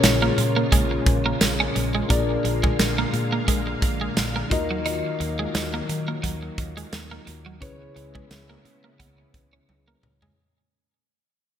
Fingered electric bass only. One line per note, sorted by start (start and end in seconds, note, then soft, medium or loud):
0.03 0.28 A#1 loud
0.38 0.63 A#2 loud
0.72 0.97 A#1 loud
1.06 1.31 A#1 medium
1.41 1.66 A#1 loud
1.76 2.01 A#1 loud
2.10 2.35 A#1 loud
2.44 2.69 A#1 loud
2.79 3.04 A#1 loud
3.13 3.38 A#2 loud
3.48 3.73 A#1 loud
3.82 4.07 A#1 loud
4.17 4.42 A#1 loud
4.51 5.01 D#2 loud
5.20 5.45 D#2 loud
5.55 5.80 D#2 loud
5.89 6.14 D#3 loud
6.24 6.49 D#2 medium
6.58 6.83 D#2 loud
6.92 7.17 D#2 loud
7.27 7.62 D#2 loud
7.62 7.87 C#2 loud
7.96 8.21 C#2 loud
8.31 8.56 C#2 loud
8.65 8.90 C#3 loud
9.00 9.25 C#2 loud
9.34 9.59 C#2 loud
9.69 9.93 C#2 medium
10.03 10.28 C#2 medium